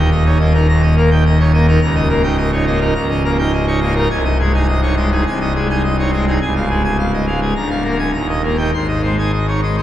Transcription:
Already playing: D#1 D#2
0.11 D#5
0.26 D#4 C#5
0.40 A#3 D#5
0.54 D#4 A#4
0.69 A#2 A#5
0.82 D#5
0.96 A#3 A#4
1.11 D#4 G5
1.26 D#5
1.40 D#4 C#5
1.53 A#3 D#5
1.68 D#4 A#4
1.81 C#1 C#2 A#5
1.95 D#5
2.09 A#3 A#4
2.23 D#4 G5
2.37 D#5
2.52 D#4 C#5
2.66 A#3 D#5
2.80 D#4 A#4
2.95 C#1 C#2 A#5
3.09 D#5
3.24 A#3 A#4
3.38 D#4 G5
3.53 D#5
3.67 D#4 C#5
3.81 A#3 D#5
3.96 D#4 A#4
4.10 C1 C2 G#5
4.25 D#5
4.39 G#3 G#4
4.54 D#4 G#5
4.67 D#5
4.82 D#4 C#5
4.97 G#3 D#5
5.11 D#4 G#4
5.26 C1 C2 G#5
5.41 D#5
5.55 G#3 G#4
5.70 D#4 G#5
5.84 D#5
5.99 D#4 C#5
6.12 G#3 D#5
6.27 D#4 G#4
6.41 C#1 C#2 G#5
6.56 F5
6.70 G#3 G#4
6.84 G#5
6.99 F5
7.14 D#5
7.27 G#3 F5
7.42 G#4
7.56 D1 D2 A#5
7.70 F5
7.84 A#3 A#4
7.98 G#5
8.13 D#1 D#2 A#5
8.29 D#5
8.43 A#3 A#4
8.57 D#4 G5
8.73 G#1 G#2 C6
8.88 D#5
9.03 G#3 C5
9.18 D#4 G#5
9.33 D#5
9.48 D#4 C#5
9.63 G#3 D#5
9.77 D#4 C5

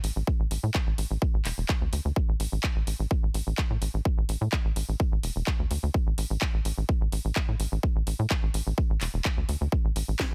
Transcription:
0.04 A1, open hi-hat
0.16 A1
0.27 kick
0.40 A1
0.51 A1, open hi-hat
0.63 A2
0.74 kick, clap
0.87 A1
0.98 A1, open hi-hat
1.11 A1
1.22 kick
1.34 A1
1.45 E1, clap, open hi-hat
1.58 E1
1.69 kick, clap
1.81 D2
1.93 D2, open hi-hat
2.05 D2
2.16 kick
2.29 A1
2.40 A1, open hi-hat
2.52 A1
2.63 kick, clap
2.76 A1
2.87 A1, open hi-hat
2.99 A1
3.11 kick
3.23 A1
3.34 A1, open hi-hat
3.47 A1
3.58 kick, clap
3.70 A2
3.82 A1, open hi-hat
3.94 A1
4.05 kick
4.18 A1
4.29 A1, open hi-hat
4.41 A2
4.52 kick, clap
4.65 A1
4.76 A1, open hi-hat
4.89 A1
5.00 kick
5.12 A1
5.23 E1, open hi-hat
5.36 E1
5.47 kick, clap
5.59 D2
5.71 D2, open hi-hat
5.83 D2
5.94 kick
6.07 A1
6.18 A1, open hi-hat
6.30 A1
6.41 kick, clap
6.54 A1
6.65 A1, open hi-hat
6.78 A1
6.89 kick
7.01 A1
7.12 A1, open hi-hat
7.25 A1
7.36 kick, clap
7.48 A2
7.60 A1, open hi-hat
7.72 A1
7.83 kick
7.96 A1
8.07 A1, open hi-hat
8.19 A2
8.30 kick, clap
8.43 A1
8.54 A1, open hi-hat
8.67 A1
8.78 kick
8.90 A1
9.01 E1, clap, open hi-hat
9.14 E1
9.25 kick, clap
9.37 D2
9.49 D2, open hi-hat
9.61 D2
9.72 kick
9.85 A1
9.96 A1, open hi-hat
10.08 A1
10.19 kick, snare, clap

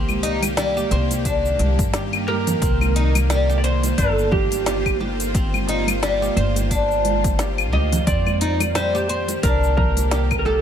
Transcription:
Already playing: C2 D#3 A#3 C4 G4
0.09 high conga, cabasa, claves
0.23 D#4, open hi-hat
0.42 open hi-hat, muted conga, high conga, cabasa, claves
0.57 G3, snare, open hi-hat, cabasa
0.76 G4, high conga, cabasa
0.91 C2 C5, open hi-hat
1.11 open hi-hat, muted conga, cabasa
1.25 D4, kick, open hi-hat, cabasa
1.46 cabasa
1.59 C2, open hi-hat, high conga
1.79 G2, kick, open hi-hat, cabasa
1.94 G4, snare, open hi-hat, cabasa
2.13 cabasa, claves
2.28 G4 A#4, muted conga
2.47 open hi-hat, low conga, cabasa
2.62 C2 C4 F4 C5, kick, open hi-hat, cabasa
2.81 high conga, cabasa, claves
2.96 D#4, open hi-hat
3.15 open hi-hat, muted conga, high conga, cabasa, claves
3.30 G3, snare, open hi-hat, cabasa
3.49 G4, high conga, cabasa
3.58 D5
3.64 C5, open hi-hat
3.83 open hi-hat, muted conga, cabasa
3.98 G1 D4 A4, kick, open hi-hat, cabasa
4.19 cabasa
4.32 G4, kick, muted conga, low conga
4.51 open hi-hat, muted conga, cabasa
4.66 G4, snare, open hi-hat, cabasa
4.86 kick, cabasa, claves
5.00 G4, muted conga
5.20 open hi-hat, cabasa
5.35 C4, kick, open hi-hat, cabasa
5.54 high conga, cabasa, claves
5.69 D#4, open hi-hat
5.87 open hi-hat, muted conga, high conga, cabasa, claves
6.03 G3, snare, open hi-hat, cabasa
6.22 G4, high conga, cabasa
6.36 G1 C5, open hi-hat
6.56 open hi-hat, muted conga, cabasa
6.71 D4, kick, open hi-hat, cabasa
6.91 cabasa
7.05 open hi-hat, high conga
7.24 kick, open hi-hat, cabasa
7.39 G4, snare, open hi-hat, cabasa
7.58 cabasa, claves
7.73 D2 G4 D#5, muted conga
7.92 open hi-hat, low conga, cabasa
8.07 F2 D#3 A#3 C4 G4 D5, kick, open hi-hat, cabasa
8.26 high conga, cabasa, claves
8.41 D#4, open hi-hat
8.60 open hi-hat, muted conga, high conga, cabasa, claves
8.75 G3 C5, snare, open hi-hat, cabasa
8.94 G4, high conga, cabasa
9.09 C5, open hi-hat
9.28 open hi-hat, muted conga, cabasa
9.43 C2 D4 A#4, kick, open hi-hat, cabasa
9.64 cabasa
9.77 A#4, kick, muted conga, low conga
9.97 open hi-hat, muted conga, cabasa
10.11 G4, snare, open hi-hat, cabasa
10.31 kick, cabasa, claves
10.39 A#4
10.45 G4 A4, muted conga

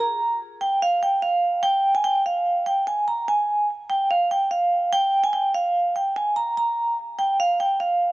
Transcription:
0.00 A#5
0.61 G5
0.82 F5
1.03 G5
1.22 F5
1.63 G5
1.95 G#5
2.04 G5
2.26 F5
2.66 G5
2.87 G#5
3.08 A#5
3.28 G#5
3.90 G5
4.11 F5
4.31 G5
4.51 F5
4.93 G5
5.24 G#5
5.33 G5
5.55 F5
5.96 G5
6.16 G#5
6.36 A#5
6.57 A#5
7.19 G5
7.40 F5
7.60 G5
7.80 F5

